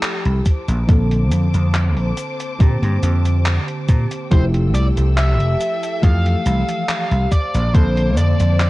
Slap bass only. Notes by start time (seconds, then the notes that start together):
0.25 C2
0.68 A#1
0.89 A#1
1.31 F2
1.54 F2
1.97 A#1
2.60 A#2
2.82 G2
3.03 F2
3.89 A#2
4.32 F1
4.74 C2
4.97 C2
5.40 F1
6.03 F2
6.46 C2
7.11 C2
7.54 A#1
7.75 A#1
8.18 F2
8.40 F2